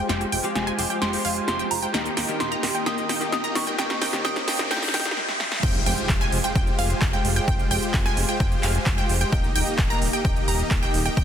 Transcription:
Already playing: G#3 G5, riser
0.09 F1 F3 G#3 C4 F4 G4 C5 G5, snare, closed hi-hat
0.21 closed hi-hat
0.32 F1 G#3 F4 G4 C5 G5, open hi-hat
0.43 F3 G#3 C4 G4, closed hi-hat
0.55 F1 G#5, snare, closed hi-hat
0.67 G#3 F4 G4 C5 G#5, closed hi-hat
0.78 F1 F3 G#3 C4 G4, open hi-hat
0.90 G#3 F4 G4 C5 G5, closed hi-hat
1.02 F1 G#3 F4 G4 C5 G5 C6, snare, closed hi-hat
1.12 F3 G#3 C4 G4, open hi-hat
1.25 F1 G#3 F4 G4 C5 F5 G#5, open hi-hat
1.36 closed hi-hat
1.47 F1 F3 G#3 C4 G4 C6, snare, closed hi-hat
1.59 G#3 F4 G4 C5 G5, closed hi-hat
1.71 F1 A#5, open hi-hat
1.82 G#3 F4 G4 C5 G5, closed hi-hat
1.93 D#1 D#3 G3 A#3 D#4 G4 D#5 G5, snare, closed hi-hat
2.06 closed hi-hat
2.17 D#1 A#3 D#4 G4 D#5 G5, snare, open hi-hat
2.28 D#3 G3 A#3 G4, closed hi-hat
2.40 D#1 C6, snare, closed hi-hat
2.52 A#3 D#4 G4 D#5 A#5, closed hi-hat
2.62 D#1 D#3 G3 A#3 G4, snare, open hi-hat
2.75 A#3 D#4 G4 D#5 G5, closed hi-hat
2.85 D#1 D#3 G3 A#3 D#4 G4 D#5 G5 D#6, snare, closed hi-hat
2.98 closed hi-hat
3.09 D#1 A#3 D#4 G4 D#5 G5, snare, open hi-hat
3.20 D#3 G3 A#3 G4, closed hi-hat
3.32 D#1 D#6, snare, closed hi-hat
3.44 A#3 D#4 G4 D#5 A#5, closed hi-hat
3.55 D#1 D#3 G3 A#3 G4 C#6, snare, open hi-hat
3.67 A#3 D#4 G4 D#5 G5, closed hi-hat
3.78 D#1 D#3 G3 A#3 C4 D#4 G4 D#5 G5, snare, closed hi-hat, noise sweep
3.90 snare, closed hi-hat
4.02 D#1 A#3 D#4 G4 D#5 G5, snare, open hi-hat
4.13 D#3 G3 A#3 G4, snare, closed hi-hat
4.24 D#1 D#3 G3 A#3 D#4 G4 D#5 G5 D#6, snare, closed hi-hat
4.36 snare, closed hi-hat
4.48 D#1 A#3 D#4 G4 D#5 G5, snare, open hi-hat
4.58 D#3 G3 A#3 G4, snare, closed hi-hat
4.70 D#1 D#3 G3 A#3 D#4 G4 D#5 G5 G6, snare, closed hi-hat
4.77 snare
4.82 snare, open hi-hat
4.88 snare
4.93 D#1 D#3 G3 A#3 D#4 G4 D#5 G5, snare, open hi-hat
5.00 snare
5.05 snare, closed hi-hat
5.11 snare
5.17 snare
5.29 snare
5.40 snare
5.52 snare
5.63 F1 G#3 F4 G4 C5 G5, kick, closed hi-hat, crash, impact
5.75 closed hi-hat
5.86 F1 G#3 F4 G4 C5 G5, open hi-hat
5.98 closed hi-hat
6.09 F1, kick, clap, closed hi-hat
6.21 G#3 F4 G4 C5 G#5, closed hi-hat
6.32 F1, open hi-hat
6.44 G#3 F4 G4 C5 G5, closed hi-hat
6.55 F1 G#3 F4 G4 C5 G5, kick, closed hi-hat
6.67 closed hi-hat
6.79 F1 G#3 F4 G4 C5 F5 G#5, open hi-hat
6.90 closed hi-hat
7.02 F1, kick, clap, closed hi-hat
7.13 G#3 F4 G4 C5 G5, closed hi-hat
7.25 F1, open hi-hat
7.36 G#3 F4 G4 C5 G5, closed hi-hat
7.48 F1 G4 G5, kick, closed hi-hat
7.59 closed hi-hat
7.71 F1 G#3 F4 G4 C5 G5, open hi-hat
7.82 closed hi-hat
7.94 F1, kick, clap, closed hi-hat
8.05 G#3 F4 G4 C5 G#5, closed hi-hat
8.17 F1, open hi-hat
8.29 G#3 F4 G4 C5 G5, closed hi-hat
8.40 F1 G#3 F4 G4 C5 G5, kick, closed hi-hat
8.52 closed hi-hat
8.63 F1 G#3 F4 G4 C5 F5 G#5, clap, open hi-hat
8.75 closed hi-hat
8.86 F1, kick, clap, closed hi-hat
8.98 G#3 F4 G4 C5 G5, closed hi-hat
9.09 F1, open hi-hat
9.21 G#3 F4 G4 C5 G5, closed hi-hat
9.32 D#1 D#3 A#3 D#4 G4 D#5 G5, kick, closed hi-hat
9.44 closed hi-hat
9.56 D#1 A#3 D#4 G4 D#5 G5, open hi-hat
9.67 closed hi-hat
9.79 D#1, kick, clap, closed hi-hat
9.90 A#3 D#4 G4 D#5 A#5, closed hi-hat
10.02 D#1, open hi-hat
10.13 A#3 D#4 G4 D#5 G5, closed hi-hat
10.25 D#1 A#3 D#4 G4 D#5 G5, kick, closed hi-hat
10.36 closed hi-hat
10.48 D#1 A#3 D#4 G4 D#5 A#5, open hi-hat
10.59 closed hi-hat
10.71 D#1, kick, clap, closed hi-hat
10.82 A#3 D#4 G4 D#5 G5, closed hi-hat
10.94 D#1, open hi-hat
11.06 A#3 D#4 G4 D#5 G5, closed hi-hat
11.17 D#1 D#4 G4 D#5 G5, kick, closed hi-hat

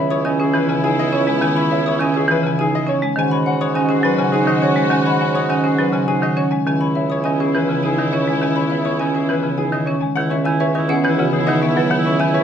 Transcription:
Already playing: C#2 B3 E4 C#5 E5
0.11 C#5 D#6
0.25 D#3 C#4 D#5 G#5
0.40 C#4 G#4
0.54 E3 B4
0.69 C#3 G#5
0.84 D#4 G#4 G#5
0.99 D#5
1.12 C#4 C#5
1.27 G#3 G#5
1.41 D#3 C#4 G#5
1.56 C#5 B5
1.71 C#5 E5
1.86 C#5 D#6
1.99 D#3 C#4 D#5 G#5
2.14 C#4 G#4
2.28 E3 B4
2.43 C#3 G#5
2.59 D#4 G#4 G#5
2.75 D#5
2.87 C#4 C#5
3.02 G#3 G#5
3.16 G#2 D#3 C#4 F#4 G#5
3.31 C#5 B5
3.46 C#5 F#5
3.61 C#5 D#6
3.74 D#3 C#4 D#5 G#5
3.89 C#4 G#4
4.03 F#3 B4
4.18 C#3 G#5
4.32 D#4 G#4 G#5
4.47 D#3 D#5
4.62 C#4 C#5
4.76 G#3 G#5
4.90 D#3 C#4 G#5
5.05 C#5 B5
5.21 C#5 F#5
5.35 C#5 D#6
5.49 D#3 C#4 D#5 G#5
5.64 C#4 G#4
5.79 F#3 B4
5.93 C#3 G#5
6.08 D#4 G#4 G#5
6.22 D#3 D#5
6.36 C#4 C#5
6.51 G#3 G#5
6.66 C#2 D#3 B3 C#4 E4 G#5
6.81 C#5 B5
6.95 C#5 E5
7.10 C#5 D#6
7.24 D#3 C#4 D#5 G#5
7.40 C#4 G#4
7.55 E3 B4
7.69 C#3 G#5
7.83 D#4 G#4 G#5
7.98 D#3 D#5
8.12 C#4 C#5
8.28 G#3 G#5
8.42 D#3 C#4 G#5
8.56 C#5 B5
8.70 C#5 E5
8.85 C#5 D#6
8.99 D#3 C#4 D#5 G#5
9.14 C#4 G#4
9.29 E3 B4
9.43 C#3 G#5
9.58 D#4 G#4 G#5
9.72 D#3 D#5
9.86 C#4 C#5
10.01 G#3 G#5
10.15 C#2 D#3 B3 E4 F#5
10.30 C#4 C#5 E5
10.45 D#3 E4 E5 G#5
10.60 B4 C#5 E5
10.75 D#3 E4 D#5 C#6
10.89 B3 C#4 G#4 F#5
11.04 E3 B4
11.08 E4
11.18 C#3 F#4 F#5
11.33 E3 G#4
11.38 E4
11.47 D#3 D#4 D#5 F#5
11.61 B3 C#5 E5
11.68 E4
11.76 F#3 B4 F#5
11.90 D#3 F#5
11.98 E4
12.05 C#4 C#5 E5
12.19 D#3 E5 G#5
12.29 E4
12.34 B4 C#5 E5

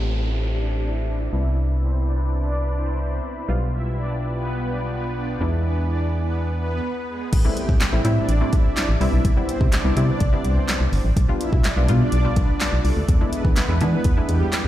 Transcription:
Already playing: A1 A3 C4 G4 C5 A5, downlifter
1.32 C2 B3 C4 E4 B4 B5
3.48 B1 G3 B3 F4 B4 G5
5.41 E2 G#3 D4 E4 D5 G#5
7.33 A1, kick, closed hi-hat, crash
7.45 G3 A3 C4 E4
7.57 closed hi-hat
7.69 A2, kick
7.81 snare, clap, closed hi-hat
7.93 A1 G3 A3 C4 E4
8.05 A2 G3 A3 C4 E4, closed hi-hat
8.29 A1, closed hi-hat
8.41 G3 A3 C4 E4
8.53 A1, kick, closed hi-hat
8.77 snare, clap, closed hi-hat
8.89 A1
9.01 C2 G3 B3 C4 E4, open hi-hat
9.13 B1
9.25 C2, kick, closed hi-hat
9.37 G3 B3 C4 E4
9.49 closed hi-hat
9.61 C3, kick
9.73 snare, clap, closed hi-hat
9.85 C2 G3 B3 C4 E4
9.97 C3 G3 B3 C4 E4, closed hi-hat
10.20 C2, kick, closed hi-hat
10.33 G3 B3 C4 E4
10.45 C2, closed hi-hat
10.68 snare, clap, closed hi-hat
10.81 C2
10.92 G1, open hi-hat
11.05 A1
11.17 B1, kick, closed hi-hat
11.28 G3 B3 D4 F4
11.41 closed hi-hat
11.53 B2, kick
11.64 snare, clap, closed hi-hat
11.77 B1 G3 B3 D4 F4
11.88 B2 G3 B3 D4 F4, closed hi-hat
12.12 B1, closed hi-hat
12.24 G3 B3 D4 F4
12.36 B1, kick, closed hi-hat
12.61 snare, clap, closed hi-hat
12.73 B1
12.85 C2, open hi-hat
12.97 D2
13.09 E2, kick, closed hi-hat
13.21 G#3 B3 D4 E4
13.33 closed hi-hat
13.45 E3, kick
13.57 snare, clap, closed hi-hat
13.69 E2 G#3 B3 D4 E4
13.81 E3 G#3 B3 D4 E4, closed hi-hat
14.04 E2, kick, closed hi-hat
14.17 G#3 B3 D4 E4
14.29 E2, closed hi-hat
14.53 snare, clap, closed hi-hat
14.65 E2

